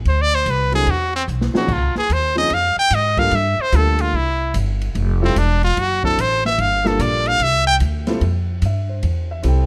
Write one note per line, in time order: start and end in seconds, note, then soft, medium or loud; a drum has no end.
0.05 0.45 D2 medium
0.05 0.23 C5 medium
0.05 kick soft
0.05 ride medium
0.21 0.36 D5 loud
0.35 0.52 C5 loud
0.46 0.86 C2 medium
0.46 kick soft
0.46 hi-hat pedal soft
0.46 ride medium
0.50 0.74 B4 loud
0.72 0.85 F#3 medium
0.72 0.86 C4 medium
0.72 0.86 D4 medium
0.72 0.86 E4 medium
0.72 0.92 G#4 medium
0.72 0.86 A4 medium
0.72 ride soft
0.87 1.27 E2 medium
0.87 1.15 F#4 medium
0.87 kick soft
0.87 ride medium
1.16 1.24 C4 medium
1.28 1.53 B1 medium
1.28 hi-hat pedal medium
1.41 snare medium
1.53 1.67 F3 medium
1.53 1.67 C4 medium
1.53 1.67 C#4 medium
1.53 1.68 D#4 medium
1.53 1.74 F#4 medium
1.53 1.68 G#4 medium
1.53 snare medium
1.68 1.93 C#2 medium
1.68 kick medium
1.68 crash medium
1.73 1.97 F4 medium
1.95 2.14 G#4 loud
1.95 muted upright bass stroke soft
1.95 snare medium
2.10 2.49 D#2 medium
2.10 2.37 C5 medium
2.10 kick soft
2.10 hi-hat pedal medium
2.10 ride medium
2.35 2.49 F3 medium
2.35 2.49 C4 medium
2.35 2.49 C#4 medium
2.35 2.50 D#4 medium
2.35 2.50 G#4 medium
2.35 2.55 D#5 loud
2.35 snare soft
2.50 2.75 F2 medium
2.50 kick soft
2.50 ride medium
2.54 2.78 F5 medium
2.76 2.96 G5 loud
2.76 muted upright bass stroke soft
2.90 3.31 G#2 medium
2.90 kick soft
2.90 hi-hat pedal medium
2.90 ride medium
2.94 3.20 D#5 medium
3.17 3.30 G3 medium
3.17 3.31 A#3 medium
3.17 3.31 D4 medium
3.17 3.31 F4 medium
3.17 3.31 A4 medium
3.17 3.37 F5 loud
3.17 kick medium
3.17 ride medium
3.31 3.57 G2 loud
3.31 3.63 E5 medium
3.31 kick soft
3.31 ride medium
3.59 3.77 C5 medium
3.59 muted upright bass stroke soft
3.72 4.12 D2 loud
3.72 4.13 G3 medium
3.72 4.13 A#3 medium
3.72 4.14 D4 medium
3.72 4.14 F4 medium
3.72 4.14 A4 medium
3.72 4.02 A4 medium
3.72 kick soft
3.72 hi-hat pedal medium
3.72 ride medium
3.99 4.17 F4 medium
3.99 ride medium
4.13 4.53 C2 medium
4.13 4.55 E4 loud
4.13 kick soft
4.54 4.94 G1 medium
4.54 kick soft
4.54 hi-hat pedal medium
4.54 ride medium
4.81 ride medium
4.95 5.35 F1 medium
4.95 kick soft
4.95 ride medium
5.21 5.34 G3 medium
5.21 5.34 C4 medium
5.21 5.39 C4 medium
5.21 5.34 E4 medium
5.21 5.35 F4 medium
5.21 5.35 A4 loud
5.36 5.76 E1 medium
5.36 5.64 D4 medium
5.36 kick soft
5.36 hi-hat pedal medium
5.36 ride medium
5.63 5.81 F4 loud
5.63 ride medium
5.77 6.16 F#1 medium
5.77 6.04 F#4 medium
5.77 kick soft
5.77 ride medium
6.03 6.16 F#3 medium
6.03 6.16 C4 medium
6.03 6.16 D4 medium
6.03 6.17 E4 medium
6.03 6.17 A4 medium
6.03 6.22 A4 loud
6.03 kick medium
6.18 6.57 A1 medium
6.18 6.45 C5 loud
6.18 kick soft
6.18 hi-hat pedal medium
6.18 ride medium
6.45 6.62 E5 medium
6.45 snare medium
6.58 6.98 G1 loud
6.58 6.89 F5 loud
6.58 kick soft
6.58 ride medium
6.84 7.37 G3 medium
6.84 7.37 A#3 medium
6.84 7.37 D4 medium
6.84 7.37 F4 medium
6.84 7.37 A4 medium
6.84 7.03 A4 medium
6.84 snare medium
6.99 7.39 A#1 loud
6.99 7.29 D5 loud
6.99 kick soft
6.99 hi-hat pedal medium
6.99 ride medium
7.26 7.44 F5 loud
7.26 ride medium
7.40 7.79 C2 medium
7.40 7.67 E5 loud
7.40 kick soft
7.40 ride medium
7.67 7.76 G5 loud
7.80 8.20 D2 loud
7.80 kick soft
7.80 hi-hat pedal medium
7.80 ride medium
8.07 8.20 G3 medium
8.07 8.20 C4 medium
8.07 8.20 E4 medium
8.07 8.20 F4 medium
8.07 8.21 A4 loud
8.07 snare medium
8.07 ride medium
8.21 8.61 F2 medium
8.21 kick soft
8.21 ride medium
8.62 9.02 G2 medium
8.62 8.90 E5 medium
8.62 kick soft
8.62 hi-hat pedal medium
8.62 ride medium
8.89 9.27 C5 medium
9.03 9.43 E2 medium
9.03 kick soft
9.03 ride medium
9.31 9.44 E5 medium
9.43 9.66 C2 medium
9.43 9.66 C4 medium
9.43 9.66 E4 medium
9.43 9.66 G4 medium
9.43 9.66 A4 medium
9.43 kick soft
9.43 hi-hat pedal medium
9.43 ride medium
9.48 9.66 G5 medium